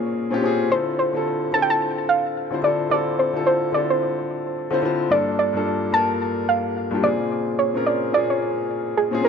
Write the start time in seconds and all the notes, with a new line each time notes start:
Already playing: A#2 C#3 A#3 C4 C#4 F4 G#4 A#4
0.30 A#2 C4 C#4 F4 G4
0.42 A#2 C4 C#4 F4 G#4
0.70 D3 C4 E4 F4 A4 C5
0.99 C5
1.13 D3 C4 E4 F4 A4
1.52 D3 C4 E4 F4 A4 A5
1.62 G5
1.70 A5
2.09 F5
2.51 D3 C4 E4 F4 C5
2.62 D3 C4 E4 F4 A4 D5
2.90 D3 C4 E4 F4 A4 D5
3.19 C5
3.33 D3 C4 E4 F4 A4
3.47 C5
3.72 D3 C4 E4 F4 A4 D5
3.90 C5
4.71 D3 C4 E4 F4 C5
4.82 D3 C4 E4 F4 C5
5.09 G2 A#3 D4 F4 A4 D5
5.39 D5
5.53 G2 A#3 D4 F4 A4
5.92 G2 A#3 D4 F4 A#4 A5
6.49 F5
6.91 G2 A#3 D4 F4 G4
7.02 A#2 C#3 C4 F4 G#4 D5
7.59 C#5
7.73 A#2 C4 C#4 F4 A#4
7.86 D5
8.12 A#2 A#3 C#4 F4 G#4 D5
8.30 C#5
8.97 G#4
9.11 A#2 C4 C#4 F4 G#4
9.22 A#2 C4 C#4 F4 A#4